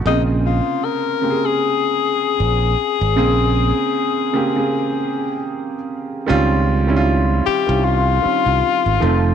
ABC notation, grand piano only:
X:1
M:4/4
L:1/16
Q:"Swing 16ths" 1/4=77
K:Dblyd
V:1 name="Grand piano"
[C,D,B,CA]4- [C,D,B,CA] z [D,B,CGA]6 z4 | [D,B,CA]4- [D,B,CA] z [D,B,CG] [D,B,CA]6 z3 | [E,G,CDF]2 z [E,G,CD_F=F]3 z [E,G,CDF]2 z [E,G,CDF]4 [E,F,=A,CF]2 |]